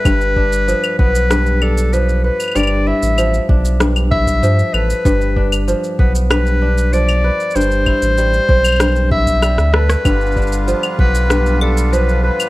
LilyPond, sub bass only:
\new Staff \with { instrumentName = "Sub bass" } { \clef bass \time 4/4 \key g \mixolydian \tempo 4 = 96 g,,4 r8 b,,2 r8 | g,,8 r16 a,,8 r16 b,,4. g,16 r16 a,,16 r16 | g,,4 r8 b,,2 r8 | g,,8 r16 a,,8 r16 b,,4.~ b,,16 d,8 r16 |
g,,4 r8 b,,2 r8 | }